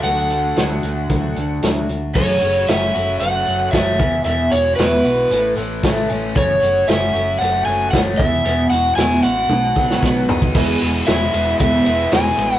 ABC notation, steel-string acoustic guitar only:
X:1
M:4/4
L:1/8
Q:1/4=114
K:E
V:1 name="Steel-string acoustic guitar"
[=D,F,A,=DF] [A,DF] [F,A,DF] [A,DF] [D,F,A,DF] [A,DF] [F,A,DF] [A,DF] | [F,,C,F,A,CF] [F,A,CF] [F,,C,F,A,CF] [F,A,CF] [F,A,CF] [F,A,CF] [F,,C,F,A,CF] [E,B,EF] | [E,,B,,E,B,EF] [E,B,EF] [E,,B,,E,B,EF] [E,B,EF] [E,A,CA] [A,CA] [A,,E,A,CA] [A,CA] | [F,,C,F,A,CF] [F,A,CF] [F,,C,F,A,CF] [F,A,CF] [F,A,CF] [F,A,CF] [F,,C,F,A,CF] [E,B,EF] |
[E,,B,,E,B,EF] [E,B,EF] [E,,B,,E,B,EF] [E,B,EF] [F,B,DF] [B,DF] [B,,F,B,DF] [B,DF] | [E,,B,,E,G,B,G] [E,G,B,G] [E,G,B,G] [E,G,B,G] [E,,B,,E,G,B,G] [E,G,B,G] [E,G,B,G] [E,G,B,G] |]